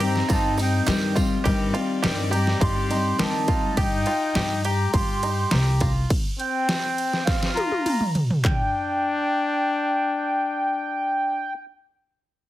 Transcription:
Already playing: G2 D#3 G3 C4 G4 A#5
0.00 G3 C4 D#4 G4, ride, tambourine
0.16 snare
0.28 G2 G3 C4 D#4 F4 G4 A5, kick, ride, tambourine
0.57 G3 C4 D#4 G4, ride, tambourine
0.62 G5
0.86 G2 D#3 G3 C4 D#4 G4, snare, clap, ride, tambourine
1.15 G3 C4 D#4 F4 G4, kick, ride, tambourine
1.44 G2 D#3 G3 C4 D#4 G4 D5, kick, ride
1.73 G3 C4 D#4 F4 G4, ride
2.02 G2 D#3 G3 C4 D#4 G4, snare, ride
2.30 G3 C4 D#4 G4 A#5, ride
2.47 snare
2.60 G2 G3 C4 D#4 F4 G4 C6, kick, ride
2.89 G3 C4 D#4 G4, ride
3.17 G2 D#3 G3 C4 D#4 G4 A5, snare, ride
3.47 G3 C4 D#4 F4 G4, kick, ride
3.77 G2 D#4 G4 G5, kick, ride
4.06 F4, ride
4.35 G2 G4, snare, ride
4.65 G4 A#5, ride
4.93 G2 F4 G4 C6, kick, ride
5.23 D#4, ride
5.51 C2 G4 A#5, snare, ride
5.80 F4, kick, ride
6.10 kick, ride
6.39 C4 G5, ride
6.69 snare, ride
6.98 ride
7.13 snare
7.25 C4 F5, kick, snare, ride
7.43 snare
7.54 F4 A#5, high tom, ride
7.72 high tom
7.86 mid tom, ride
8.01 mid tom
8.15 floor tom, ride
8.30 floor tom
8.43 D4 G5, kick, clap, floor tom

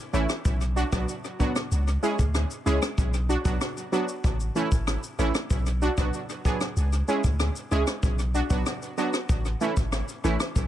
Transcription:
0.13 A1 E3 A3 C#4 E4, shaker
0.29 cross-stick, shaker
0.45 B1, kick, shaker
0.61 shaker
0.76 D4 F#4, shaker
0.92 B1 F#3 B3 D4 F#4, kick, cross-stick, shaker
1.08 shaker
1.24 shaker
1.39 F#3 B3 D4 F#4, kick, shaker
1.56 cross-stick, shaker
1.71 C#2, shaker
1.88 shaker
2.03 G#3 C#4 E4 G#4, shaker
2.19 D2, kick, shaker
2.35 cross-stick, shaker
2.51 shaker
2.66 C#2 G#3 C#4 E4 G#4, shaker
2.82 cross-stick, shaker
2.98 B1, kick, shaker
3.14 shaker
3.29 D4 F#4, shaker
3.45 B1 F#3 B3 D4 F#4, kick, shaker
3.61 cross-stick, shaker
3.77 shaker
3.92 F#3 B3 D4 F#4, shaker
4.08 shaker
4.24 A1, kick, shaker
4.40 shaker
4.55 E3 A3 C#4 E4, shaker
4.72 G#1, kick, shaker
4.87 cross-stick, shaker
5.03 shaker
5.19 A1 E3 A3 C#4 E4, shaker
5.35 cross-stick, shaker
5.50 B1, kick, shaker
5.66 shaker
5.82 D4 F#4, shaker
5.97 B1 F#3 B3 D4 F#4, kick, cross-stick, shaker
6.13 shaker
6.29 shaker
6.45 F#3 B3 D4 G#4, kick, shaker
6.61 cross-stick, shaker
6.77 C#2, shaker
6.93 shaker
7.08 G#3 C#4 E4 G#4, shaker
7.24 D2, kick, shaker
7.40 cross-stick, shaker
7.56 shaker
7.71 C#2 G#3 C#4 E4 G#4, shaker
7.87 cross-stick, shaker
8.03 B1, kick, shaker
8.19 shaker
8.34 D4 F#4, shaker
8.50 B1 F#3 B3 D4 F#4, kick, shaker
8.66 cross-stick, shaker
8.82 shaker
8.97 F#3 B3 D4 F#4, shaker
9.13 cross-stick, shaker
9.29 A1, kick, shaker
9.45 shaker
9.61 E3 A3 C#4 E4, shaker
9.77 G#1, kick, shaker
9.92 cross-stick, shaker
10.08 shaker
10.24 A1 E3 A3 C#4 E4, shaker
10.40 cross-stick, shaker
10.56 B1, kick, shaker

